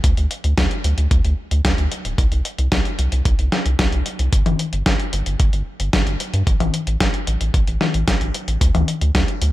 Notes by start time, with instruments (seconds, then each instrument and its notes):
0.04 analog synth bass D2, kick, closed hi-hat
0.17 analog synth bass D2, closed hi-hat
0.31 closed hi-hat
0.44 analog synth bass D2, closed hi-hat
0.58 analog synth bass D2, kick, snare, closed hi-hat
0.71 closed hi-hat
0.84 analog synth bass D2, closed hi-hat
0.98 analog synth bass D2, closed hi-hat
1.11 analog synth bass D2, kick, closed hi-hat
1.25 analog synth bass D2, closed hi-hat
1.51 analog synth bass D2, closed hi-hat
1.65 analog synth bass D2, kick, snare, closed hi-hat
1.78 analog synth bass D2, closed hi-hat
1.92 closed hi-hat
2.05 analog synth bass D1, closed hi-hat
2.18 analog synth bass C2, kick, closed hi-hat
2.32 analog synth bass C2, closed hi-hat
2.45 closed hi-hat
2.58 analog synth bass C2, closed hi-hat
2.72 analog synth bass C2, kick, snare, closed hi-hat
2.85 closed hi-hat
2.99 analog synth bass C2, closed hi-hat
3.12 analog synth bass C2, closed hi-hat
3.25 analog synth bass C2, kick, closed hi-hat
3.39 analog synth bass C2, closed hi-hat
3.52 snare, closed hi-hat
3.66 analog synth bass C2, closed hi-hat
3.79 analog synth bass C2, kick, snare, closed hi-hat
3.92 analog synth bass C2, closed hi-hat
4.06 closed hi-hat
4.19 analog synth bass C2, closed hi-hat
4.33 analog synth bass G1, kick, closed hi-hat
4.46 analog synth bass G1, closed hi-hat, high tom
4.59 closed hi-hat
4.73 analog synth bass G1, closed hi-hat
4.86 analog synth bass G1, kick, snare, closed hi-hat
5.00 closed hi-hat
5.13 analog synth bass G1, closed hi-hat
5.26 analog synth bass G1, closed hi-hat
5.40 analog synth bass G1, kick, closed hi-hat
5.53 analog synth bass G1, closed hi-hat
5.80 analog synth bass G1, closed hi-hat
5.93 analog synth bass G1, kick, snare, closed hi-hat
6.07 analog synth bass G1, closed hi-hat
6.20 closed hi-hat
6.33 analog synth bass G2, closed hi-hat
6.47 analog synth bass A1, kick, closed hi-hat
6.60 analog synth bass A1, closed hi-hat, high tom
6.74 closed hi-hat
6.87 analog synth bass A1, closed hi-hat
7.00 analog synth bass A1, kick, snare, closed hi-hat
7.14 closed hi-hat
7.27 analog synth bass A1, closed hi-hat
7.41 analog synth bass A1, closed hi-hat
7.54 analog synth bass A1, kick, closed hi-hat
7.67 analog synth bass A1, closed hi-hat
7.81 snare, high tom
7.94 analog synth bass A1, closed hi-hat
8.08 analog synth bass A1, kick, snare, closed hi-hat
8.21 analog synth bass A1, closed hi-hat
8.34 closed hi-hat
8.48 analog synth bass A1, closed hi-hat
8.61 analog synth bass D2, kick, closed hi-hat
8.75 analog synth bass D2, closed hi-hat, high tom
8.88 closed hi-hat
9.01 analog synth bass D2, closed hi-hat
9.15 analog synth bass D2, kick, snare, closed hi-hat
9.28 closed hi-hat
9.42 analog synth bass D2, closed hi-hat